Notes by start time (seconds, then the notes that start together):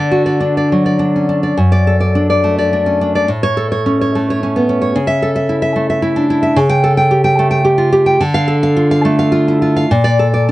Already playing: D3 D5
0.11 F#4
0.26 D5
0.40 D4
0.57 D5
0.72 F#3
0.86 D5
0.99 D4
1.16 C#4
1.29 D4
1.43 D5
1.57 F#2
1.72 D5
1.87 A4
2.00 D5
2.15 D4
2.30 D5
2.44 A3
2.58 D5
2.73 D4
2.86 C#4
3.01 D4
3.15 D5
3.28 A2
3.43 C#5
3.57 A4
3.72 C#5
3.86 C#4
4.01 C#5
4.15 A3
4.30 C#5
4.43 C#4
4.56 B3
4.69 C#4
4.82 C#5
4.96 C#3
5.07 E5
5.22 A4
5.36 E5
5.49 E4
5.62 E5
5.76 A3
5.90 E5
6.02 E4
6.16 D4
6.30 E4
6.43 E5
6.56 C#3
6.69 G5
6.84 A4
6.97 G5
7.11 G4
7.24 G5
7.39 A3
7.51 G5
7.65 G4
7.78 F4
7.92 G4
8.06 G5
8.21 D3
8.34 F5
8.48 A4
8.63 F5
8.77 F4
8.91 F5
9.05 A3
9.19 F5
9.32 F4
9.48 E4
9.62 F4
9.76 F5
9.91 A#2
10.04 D5
10.19 A4
10.34 D5